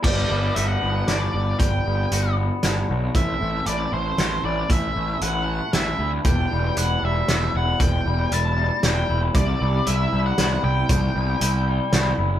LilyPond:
<<
  \new Staff \with { instrumentName = "Lead electric guitar" } { \time 3/4 \key g \major \tempo 4 = 116 d''4 e''16 fis''8. d''4 | g''4. r4. | e''4 d''8 c''4 d''8 | e''4 fis''4 e''8. r16 |
g''4 fis''8 e''4 fis''8 | g''4 a''4 g''8. r16 | d''4 e''8. fis''8. g''8~ | g''2~ g''8 r8 | }
  \new Staff \with { instrumentName = "Pedal steel guitar" } { \time 3/4 \key g \major <g d' b'>2.~ | <g d' b'>2. | <a c' e'>2.~ | <a c' e'>2. |
<e b d' g'>2.~ | <e b d' g'>2. | <c g e'>2.~ | <c g e'>2. | }
  \new Staff \with { instrumentName = "Clean electric guitar" } { \time 3/4 \key g \major g8 b8 fis'8 b8 d'4 | g8 b8 fis'8 b8 d'8 fis'8 | a,8 a8 e'8 a8 c'8 e'8 | a,8 a8 e'8 a8 c'8 e'8 |
e,8 g8 e'8 g8 d'8 e'8 | e,8 g8 e'8 g8 d'8 e'8 | c8 g8 e'8 g8 b8 e'8 | c8 g8 e'8 g8 b8 e'8 | }
  \new Staff \with { instrumentName = "Picked electric bass" } { \clef bass \time 3/4 \key g \major g,,8 g,,8 g,,8 g,,8 g,,8 g,,8 | g,,8 g,,8 g,,4 g,,8 b,,8 | a,,8 a,,8 a,,8 a,,8 a,,8 a,,8 | a,,8 a,,8 a,,4 a,,8 d,8 |
e,,8 e,,8 e,,8 e,,8 e,,8 e,,8 | e,,8 e,,8 e,,4 e,,8 e,,8 | c,8 c,8 c,8 c,8 c,8 c,8 | c,8 c,8 c,4 c,8 fis,,8 | }
  \new DrumStaff \with { instrumentName = "Drums" } \drummode { \time 3/4 <cymc bd>4 hh4 <hh sn>4 | <hh bd>4 hh4 <hh sn>4 | <hh bd>4 hh4 <hh sn>4 | <hh bd>4 hh4 <hh sn>4 |
<hh bd>4 hh4 <hh sn>4 | <hh bd>4 hh4 <hh sn>4 | <hh bd>4 hh4 <hh sn>4 | <hh bd>4 hh4 <hh sn>4 | }
>>